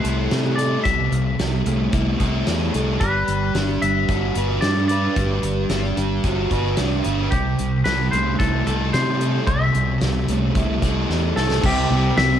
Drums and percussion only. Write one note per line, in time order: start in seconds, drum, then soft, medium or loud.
0.05 closed hi-hat medium
0.31 snare loud
0.31 closed hi-hat medium
0.58 closed hi-hat medium
0.85 kick loud
0.85 closed hi-hat medium
1.12 closed hi-hat medium
1.39 snare loud
1.39 closed hi-hat medium
1.66 closed hi-hat medium
1.93 kick loud
1.93 closed hi-hat medium
2.20 kick medium
2.20 closed hi-hat medium
2.47 snare loud
2.47 closed hi-hat medium
2.74 closed hi-hat medium
3.00 kick loud
3.00 closed hi-hat medium
3.28 closed hi-hat medium
3.55 snare loud
3.55 closed hi-hat medium
3.82 closed hi-hat medium
4.08 kick medium
4.08 closed hi-hat medium
4.35 closed hi-hat medium
4.62 snare loud
4.62 closed hi-hat medium
4.89 closed hi-hat medium
5.16 kick loud
5.16 closed hi-hat medium
5.43 closed hi-hat medium
5.70 snare loud
5.70 closed hi-hat medium
5.97 closed hi-hat medium
6.24 kick loud
6.24 closed hi-hat medium
6.51 kick medium
6.51 closed hi-hat medium
6.77 snare loud
6.77 closed hi-hat medium
7.04 closed hi-hat medium
7.32 kick loud
7.32 closed hi-hat medium
7.59 closed hi-hat medium
7.85 snare loud
7.85 closed hi-hat medium
8.13 closed hi-hat medium
8.40 kick loud
8.40 closed hi-hat medium
8.67 closed hi-hat medium
8.94 snare loud
8.94 closed hi-hat medium
9.21 closed hi-hat medium
9.47 kick loud
9.47 closed hi-hat medium
9.75 closed hi-hat medium
10.01 snare loud
10.01 closed hi-hat medium
10.28 closed hi-hat medium
10.55 kick loud
10.55 closed hi-hat medium
10.82 kick medium
10.82 closed hi-hat medium
11.10 snare medium
11.37 snare medium
11.50 snare medium
11.64 kick loud
11.64 crash loud
11.64 crash medium
12.17 snare loud
12.17 crash medium